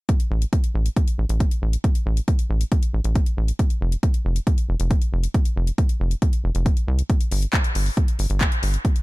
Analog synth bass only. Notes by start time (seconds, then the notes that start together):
0.31 A1
0.75 A1
1.18 A1
1.29 A1
1.62 A1
2.06 A1
2.50 A1
2.94 A1
3.04 A1
3.37 A1
3.81 F1
4.25 F1
4.69 F1
4.80 F1
5.13 F1
5.56 F1
6.00 F1
6.44 F1
6.55 F1
6.88 C2
7.31 G1
7.75 G1
8.19 G1
8.30 G1
8.63 G1